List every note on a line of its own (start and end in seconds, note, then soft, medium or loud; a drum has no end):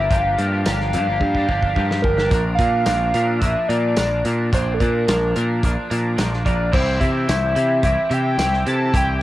0.00 0.10 D4 medium
0.00 0.11 G4 medium
0.10 0.35 G1 loud
0.10 0.36 F3 loud
0.10 0.36 A#3 loud
0.10 0.37 D4 loud
0.10 0.39 G4 loud
0.10 2.00 F5 loud
0.10 kick loud
0.10 closed hi-hat medium
0.37 0.63 G2 medium
0.37 0.63 F3 medium
0.37 0.52 A#3 medium
0.37 0.51 D4 medium
0.37 0.49 G4 medium
0.37 closed hi-hat medium
0.50 0.64 A#3 medium
0.50 0.65 D4 medium
0.50 0.66 G4 medium
0.65 0.96 G1 medium
0.65 0.91 F3 medium
0.65 0.92 A#3 medium
0.65 0.93 D4 medium
0.65 0.94 G4 loud
0.65 snare loud
0.65 closed hi-hat loud
0.65 tambourine loud
0.80 snare soft
0.92 1.06 G2 medium
0.92 1.34 F3 medium
0.92 1.08 A#3 medium
0.92 1.07 D4 medium
0.92 1.06 G4 medium
0.92 closed hi-hat medium
1.07 1.20 G1 medium
1.07 1.35 A#3 medium
1.07 1.35 D4 medium
1.07 1.33 G4 medium
1.21 1.46 G2 loud
1.21 kick medium
1.34 1.46 A#3 medium
1.34 1.47 D4 medium
1.34 1.48 G4 medium
1.34 kick medium
1.47 1.74 G1 medium
1.47 1.74 F3 medium
1.47 1.63 A#3 medium
1.47 1.62 D4 medium
1.47 1.60 G4 medium
1.47 kick medium
1.61 1.75 A#3 medium
1.61 1.75 D4 medium
1.61 1.76 G4 medium
1.61 kick medium
1.75 2.01 G2 medium
1.75 2.17 F3 medium
1.75 1.91 A#3 loud
1.75 1.90 D4 loud
1.75 1.88 G4 loud
1.75 kick medium
1.89 2.18 A#3 medium
1.89 2.17 D4 medium
1.89 2.16 G4 medium
1.89 snare medium
2.02 2.29 G1 loud
2.02 2.28 A#4 medium
2.02 kick medium
2.17 2.30 A#3 medium
2.17 2.30 D4 medium
2.17 2.30 G4 medium
2.17 snare medium
2.28 2.56 A#1 loud
2.28 2.58 F3 medium
2.28 2.58 A#3 loud
2.28 2.59 D4 loud
2.28 2.41 A#4 loud
2.28 kick loud
2.28 closed hi-hat medium
2.55 2.84 A#2 medium
2.55 2.85 F3 medium
2.55 2.86 A#3 loud
2.55 3.41 F5 loud
2.55 kick medium
2.55 closed hi-hat medium
2.59 2.86 D4 loud
2.86 3.12 A#1 loud
2.86 3.13 F3 medium
2.86 3.14 A#3 medium
2.86 3.14 D4 medium
2.86 snare loud
2.86 closed hi-hat loud
2.86 tambourine loud
3.14 3.39 A#2 loud
3.14 3.40 F3 medium
3.14 3.41 A#3 loud
3.14 3.41 D4 loud
3.14 closed hi-hat medium
3.39 3.54 A#1 loud
3.39 3.67 F3 medium
3.39 3.68 A#3 medium
3.39 3.69 D4 medium
3.39 3.70 E5 loud
3.39 kick medium
3.39 closed hi-hat loud
3.68 3.94 A#2 medium
3.68 3.96 F3 medium
3.68 3.96 A#3 loud
3.68 3.97 D4 loud
3.68 4.24 D5 loud
3.68 closed hi-hat medium
3.97 4.22 A#1 medium
3.97 4.23 F3 loud
3.97 4.24 A#3 loud
3.97 4.25 D4 loud
3.97 snare loud
3.97 closed hi-hat loud
3.97 tambourine loud
4.25 4.50 A#2 loud
4.25 4.51 F3 medium
4.25 4.52 A#3 medium
4.25 4.52 D4 medium
4.25 closed hi-hat medium
4.52 4.77 A#1 loud
4.52 4.79 F3 medium
4.52 4.79 A#3 loud
4.52 4.80 D4 loud
4.52 4.76 C5 loud
4.52 kick loud
4.52 closed hi-hat loud
4.74 4.81 A4 medium
4.79 5.05 A#2 loud
4.79 5.06 F3 medium
4.79 5.07 A#3 medium
4.79 5.07 D4 loud
4.79 5.35 A#4 loud
4.79 kick medium
4.79 closed hi-hat medium
5.07 5.33 A#1 loud
5.07 5.34 F3 medium
5.07 5.35 A#3 medium
5.07 5.35 D4 medium
5.07 snare loud
5.07 closed hi-hat loud
5.07 tambourine loud
5.36 5.61 A#2 loud
5.36 5.62 F3 medium
5.36 5.62 A#3 loud
5.36 5.63 D4 loud
5.36 closed hi-hat medium
5.63 5.76 A#1 loud
5.63 5.89 F3 medium
5.63 5.89 A#3 medium
5.63 5.90 D4 medium
5.63 kick medium
5.63 closed hi-hat loud
5.90 6.16 A#2 medium
5.90 6.16 F3 medium
5.90 6.17 A#3 loud
5.90 6.17 D4 loud
5.90 closed hi-hat medium
6.17 6.43 A#1 loud
6.17 6.43 F3 medium
6.17 6.44 A#3 loud
6.17 6.44 D4 loud
6.17 snare loud
6.17 closed hi-hat medium
6.17 tambourine loud
6.33 snare soft
6.45 6.70 A#1 medium
6.45 6.71 F3 medium
6.45 6.71 A#3 medium
6.45 6.72 D4 medium
6.45 6.71 D5 medium
6.45 kick medium
6.45 closed hi-hat medium
6.72 6.98 C2 loud
6.72 6.99 E3 loud
6.72 7.00 C4 loud
6.72 7.00 E4 loud
6.72 7.00 G4 loud
6.72 6.99 C5 medium
6.72 kick loud
6.72 crash loud
6.99 7.25 C3 medium
6.99 7.26 E3 loud
6.99 7.27 C4 medium
6.99 7.28 E4 loud
6.99 7.28 G4 loud
6.99 7.79 E5 loud
6.99 kick medium
6.99 closed hi-hat medium
7.27 7.54 C2 loud
7.27 7.55 E3 medium
7.27 7.55 C4 medium
7.27 7.55 E4 medium
7.27 7.56 G4 medium
7.27 snare loud
7.27 closed hi-hat loud
7.27 tambourine loud
7.55 7.81 C3 loud
7.55 7.81 E3 loud
7.55 7.81 C4 loud
7.55 7.82 E4 loud
7.55 7.82 G4 loud
7.55 closed hi-hat medium
7.82 7.96 C2 loud
7.82 8.08 E3 medium
7.82 8.08 C4 medium
7.82 8.09 E4 medium
7.82 8.09 G4 loud
7.82 8.15 E5 loud
7.82 kick medium
7.82 closed hi-hat loud
8.09 8.36 C3 loud
8.09 8.37 E3 medium
8.09 8.38 C4 loud
8.09 8.38 E4 loud
8.09 8.38 G4 loud
8.09 closed hi-hat medium
8.14 8.68 G5 loud
8.38 8.63 C2 loud
8.38 8.64 E3 medium
8.38 8.64 C4 loud
8.38 8.65 E4 loud
8.38 8.66 G4 loud
8.38 snare loud
8.38 closed hi-hat medium
8.38 tambourine loud
8.53 snare soft
8.65 8.91 C3 medium
8.65 8.92 E3 medium
8.65 8.92 C4 medium
8.65 8.93 E4 loud
8.65 8.93 G4 medium
8.65 8.93 A5 loud
8.65 closed hi-hat medium
8.93 9.19 C2 loud
8.93 9.20 E3 loud
8.93 9.20 C4 loud
8.93 9.21 E4 loud
8.93 9.21 G4 loud
8.93 kick loud
8.93 closed hi-hat loud
8.97 9.22 G5 loud